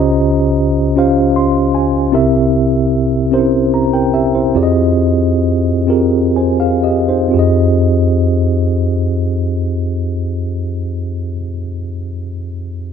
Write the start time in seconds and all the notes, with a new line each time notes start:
Already playing: C#2 C#3 C#4 F4 G4 C5 D#5
0.96 C#4 F4 G4 C5 F5
1.36 C6
1.75 G#5
2.12 C2 C3 C4 E4 G4 A#4 E5
3.31 C4 C#4 G4 A#4 C5
3.38 E4
3.74 A#5
3.93 A#4 G5
4.14 G4 E5
4.35 E4 C5
4.55 F2 C4 F4 G4 G#4 D5
4.63 D#5
5.87 C4 F4 G4 G#4 A#4
6.36 C5 G#5
6.60 G#4 F5
6.84 G4 D#5
7.09 D#4 C5
7.29 C4 F4
7.34 F2 G4 G#4
7.39 D#5